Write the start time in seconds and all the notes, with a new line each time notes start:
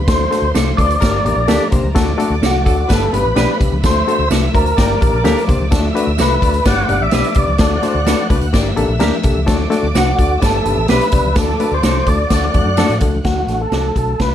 0.07 D2 A3 D4 F#4 A4 C5 C6, kick, snare, closed hi-hat, tambourine, muted conga
0.30 A3 D4 F#4 A4, snare, closed hi-hat, muted conga
0.42 D2
0.55 C2 A3 D4 F#4 A4 D5, snare, closed hi-hat, tambourine, high conga
0.77 D2 F#3 A3 D4 F#4 A4 B4 D5, kick, closed hi-hat, low conga
0.90 closed hi-hat
1.00 G1 G3 A#3 D4 G4 A#4 A#5, kick, snare, closed hi-hat, tambourine, muted conga
1.25 A1 A#3 D4 G4 A#4, closed hi-hat, muted conga, low conga
1.36 A#1
1.48 D2 A#3 D4 G4 A4 A#4 D5, snare, closed hi-hat, tambourine, high conga
1.71 C2 A#3 D4 G4 C5, kick, closed hi-hat, high conga
1.84 C#2, high conga
1.95 D2 A3 D4 F#4 A4 D5 D6, kick, snare, closed hi-hat, tambourine, muted conga
2.18 A3 D4 F#4 A4, closed hi-hat, muted conga
2.30 D2
2.41 C2 A3 D4 F#4 A4 D5, snare, closed hi-hat, tambourine, high conga
2.46 F#4
2.65 D2 F#3 A3 D4 F#4 A4, kick, closed hi-hat
2.88 G1 G3 B3 D4 G4 A4 B4 B5, kick, snare, closed hi-hat, tambourine
3.13 G1 B3 D4 G4 B4, closed hi-hat, muted conga, low conga
3.25 A1
3.35 B1 B3 D4 G4 B4 D5, snare, closed hi-hat, tambourine, high conga
3.59 C2 B3 D4 G4 B4, kick, closed hi-hat, high conga
3.72 C#2, high conga
3.82 D2 A3 D4 F#4 A4 C5 E5 E6, kick, snare, closed hi-hat, tambourine, muted conga
4.07 A3 D4 F#4 A4, closed hi-hat, muted conga
4.19 D2
4.30 C2 A3 D4 F#4 A4 B4 D5, snare, closed hi-hat, tambourine, high conga
4.54 D2 A3 D4 F#4 A#4 C5 D5, kick, closed hi-hat, low conga
4.66 closed hi-hat
4.76 G1 A#3 D4 G4 A#4 D5 D6, kick, snare, closed hi-hat, tambourine
5.01 A1 A#3 D4 G4 A#4, kick, closed hi-hat, muted conga, low conga
5.13 A#1
5.24 D2 A#3 D4 G4 A4 A#4 D5, snare, closed hi-hat, tambourine, high conga
5.38 closed hi-hat
5.48 C2 A#3 D4 G4 C5, kick, closed hi-hat, high conga
5.60 C#2, high conga
5.71 D2 A3 D4 F#4 A4 E5 E6, kick, snare, closed hi-hat, tambourine, muted conga
5.94 A3 D4 F#4 B4, closed hi-hat, muted conga
6.07 D2
6.18 C2 A3 D4 F#4 A4 B4 D5, snare, closed hi-hat, tambourine, high conga
6.41 D2 A3 D4 F#4 A4 D5, kick, closed hi-hat
6.54 closed hi-hat
6.64 G1 B3 D4 G4 B4 D5 F#5 D6, kick, snare, closed hi-hat, tambourine, muted conga
6.89 G1 B3 D4 G4 D5, closed hi-hat, muted conga, low conga
7.01 A1 E5
7.11 B1 B3 D4 G4 B4 D5, snare, closed hi-hat, tambourine, high conga
7.24 closed hi-hat
7.34 C2 B3 D4 G4 B4 D5, kick, closed hi-hat, high conga
7.47 C#2, high conga
7.58 D2 A3 D4 F#4 A4 F#5 F#6, kick, snare, closed hi-hat, tambourine, muted conga
7.82 A3 D4 F#4 C5, snare, closed hi-hat, muted conga
7.94 D2
8.05 A3 D4 F#4 A4 B4 D5, snare, closed hi-hat, tambourine, high conga
8.30 C2 A3 D4 F#4 B4 D5, kick, closed hi-hat, low conga
8.41 D2, closed hi-hat
8.53 G1 A#3 D4 G4 A#4 D5 E5 E6, kick, snare, closed hi-hat, tambourine
8.76 A1 A#3 D4 G4 A4, closed hi-hat, muted conga, low conga
8.89 A#1
8.99 D2 A#3 D4 G4 A#4 D5, snare, closed hi-hat, tambourine, high conga
9.23 C2 A#3 D4 G4 A4, kick, closed hi-hat, high conga
9.36 C#2, high conga
9.46 D2 A3 D4 F#4 A4 D5 D6, kick, snare, closed hi-hat, tambourine, muted conga
9.70 A3 D4 F#4 A4, snare, closed hi-hat, muted conga
9.83 D2
9.94 C2 A3 D4 F#4 A4 B4 D5, snare, closed hi-hat, tambourine, high conga
10.18 D2 A3 D4 F#4 A4 D5, kick, closed hi-hat
10.41 G1 B3 D4 G4 A4 B4 D5 E5 E6, kick, snare, closed hi-hat, tambourine, muted conga
10.65 G1 B3 D4 G4 B4, closed hi-hat, muted conga, low conga
10.77 A1
10.88 B1 B3 D4 G4 B4 D5, snare, closed hi-hat, tambourine, high conga
10.92 B4
11.01 closed hi-hat
11.12 C2 B3 D4 G4 D5, kick, closed hi-hat, high conga
11.25 C#2, high conga
11.35 D2 A3 D4 F#4 A4 D5 D6, kick, snare, closed hi-hat, tambourine, muted conga
11.60 A3 D4 F#4 B4, closed hi-hat, muted conga
11.71 D2 C5
11.83 C2 A3 D4 F#4 A4 D5, snare, closed hi-hat, tambourine, high conga
12.06 D2 A3 D4 F#4 A4 D5, kick, closed hi-hat, low conga
12.30 D2 A3 D4 F#4 A4 D5 F#5 F#6, kick, snare, closed hi-hat, tambourine, muted conga
12.54 E2 A3 D4 F#4 A4, kick, closed hi-hat, muted conga, low conga
12.65 F#2
12.77 A3 D4 F#4 A4 D5, snare, closed hi-hat, tambourine, high conga
12.89 A2, closed hi-hat
13.00 C#2 A3 D4 F#4 A4, kick, closed hi-hat, high conga
13.15 high conga
13.24 D2 A3 D4 F#4, kick, snare, closed hi-hat, muted conga
13.47 A1 A3 D4 A4, snare, closed hi-hat, muted conga
13.61 A4
13.71 C2 A3 D4 F#4 A4 D5, snare, closed hi-hat, high conga
13.95 B1 A3 D4 F#4 A4, kick, closed hi-hat
14.20 C2 A3 D4 F#4 B4, kick, snare, closed hi-hat